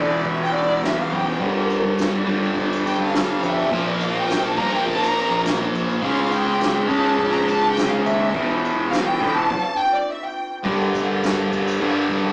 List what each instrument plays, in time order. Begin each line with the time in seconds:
Already playing: distorted electric guitar E2 B2 E3, string section D5
0.24 picked electric bass E3, string section E5, kick, ride
0.44 string section G5
0.55 string section D5, ride
0.68 picked electric bass E2
0.83 string section E5, snare, ride
1.00 string section F5
1.12 picked electric bass F#2, string section G5, ride
1.39 distorted electric guitar G2 D3 G3, picked electric bass G2, string section A#4, kick, ride
1.70 ride, tambourine
1.83 picked electric bass G3
1.98 snare, ride, tambourine
2.26 distorted electric guitar G2 D3 G3, picked electric bass G3, kick, ride, tambourine
2.43 tambourine
2.56 picked electric bass E2, kick, ride, tambourine
2.73 tambourine
2.85 string section G5, ride, tambourine
2.98 picked electric bass G3
3.03 string section F5
3.13 snare, ride, tambourine
3.41 picked electric bass F2, string section E5, ride, tambourine
3.58 tambourine
3.71 picked electric bass A#1, distorted electric guitar A#2 F3 A#3, kick, ride
3.87 string section D5
4.00 string section F5, ride, tambourine
4.14 picked electric bass A#1, string section G5
4.29 snare, ride, tambourine
4.43 string section A5
4.57 picked electric bass G2, distorted electric guitar A#2 F3 A#3, string section A#5, kick, ride, tambourine
4.74 string section G5, tambourine
4.87 picked electric bass A#2, string section A5, kick, ride, tambourine
5.03 string section A#5, tambourine
5.16 ride, tambourine
5.29 picked electric bass A#1
5.45 snare, ride, tambourine
5.73 picked electric bass A#1, ride, tambourine
5.89 tambourine
6.02 picked electric bass C#2, distorted electric guitar C#3 G#3 C#4, string section F5, kick, ride
6.32 string section G5, ride, tambourine
6.46 picked electric bass C#3
6.61 snare, ride, tambourine
6.88 picked electric bass C#3, distorted electric guitar C#3 G#3 C#4, string section A5, kick, ride, tambourine
7.05 tambourine
7.18 picked electric bass A#1, kick, ride, tambourine
7.30 string section A#5, tambourine
7.45 string section A5, ride, tambourine
7.62 picked electric bass C#3
7.72 string section G5
7.77 snare, ride, tambourine
7.89 string section F5
8.05 picked electric bass D#2, string section E5, ride, tambourine
8.21 tambourine
8.34 distorted electric guitar E2 B2 E3, picked electric bass E2, kick, ride
8.51 tambourine
8.64 ride, tambourine
8.77 picked electric bass E2
8.90 string section F5, snare, ride, tambourine
9.05 string section G5
9.09 tambourine
9.20 distorted electric guitar E2 B2 E3, picked electric bass D3, kick, ride, tambourine
9.33 string section A5
9.38 tambourine
9.50 kick, crash
9.78 string section G5
9.95 string section D5
10.10 string section E5
10.24 string section G5
10.64 distorted electric guitar G2 D3 G3, picked electric bass G2, kick, crash
10.81 tambourine
10.94 kick, tambourine, crash
11.23 picked electric bass G2, snare, tambourine, crash
11.52 kick, tambourine, crash
11.68 tambourine
11.80 distorted electric guitar G2 D3 G3, picked electric bass G2, crash
12.10 picked electric bass G2, kick, tambourine, crash
12.24 picked electric bass G2